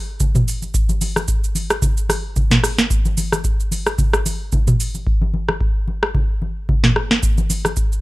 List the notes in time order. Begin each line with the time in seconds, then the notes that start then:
0.20 kick, low conga, shaker
0.35 mid tom, high conga, shaker
0.48 open hi-hat, shaker
0.62 high conga, shaker
0.74 kick, shaker
0.89 high conga, shaker
1.01 open hi-hat, high conga, shaker
1.16 cross-stick, high conga, shaker
1.28 kick, shaker
1.44 shaker
1.55 open hi-hat, high conga, shaker
1.70 cross-stick, shaker
1.82 kick, low conga, shaker
1.97 shaker
2.09 cross-stick, open hi-hat, high conga, shaker
2.36 kick, low conga, shaker
2.51 snare, mid tom, high conga, shaker
2.64 cross-stick, open hi-hat, shaker
2.78 snare, high conga, shaker
2.90 kick, shaker
3.05 high conga, shaker
3.17 open hi-hat, high conga, shaker
3.32 cross-stick, high conga, shaker
3.44 kick, shaker
3.60 shaker
3.71 open hi-hat, high conga, shaker
3.86 cross-stick, shaker
3.98 kick, low conga, shaker
4.13 cross-stick, shaker
4.26 open hi-hat, high conga, shaker
4.52 kick, low conga, shaker
4.67 mid tom, high conga, shaker
4.80 open hi-hat, shaker
4.94 high conga, shaker
5.07 kick
5.22 high conga
5.34 high conga
5.49 cross-stick, high conga
5.61 kick
5.88 high conga
6.03 cross-stick
6.15 kick, low conga
6.42 high conga
6.69 kick, low conga
6.83 snare, mid tom, high conga
6.96 cross-stick
7.11 snare, high conga
7.23 kick, shaker
7.38 high conga, shaker
7.50 open hi-hat, high conga, shaker
7.65 cross-stick, high conga, shaker
7.76 kick, shaker
7.92 shaker